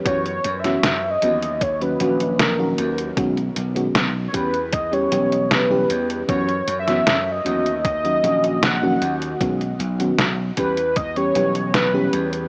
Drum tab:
HH |xxxxx-xxxxxxx-xx|xxxxx-xxxxxxx-xx|xxxxx-xxxxxxx-xx|xxxxx-xxxxxxx-xx|
SD |---oo-------o---|----o-------o---|---oo-------o---|----o-------o---|
BD |o-------o-------|o-----o-o-------|o-------o-------|o-----o-o-------|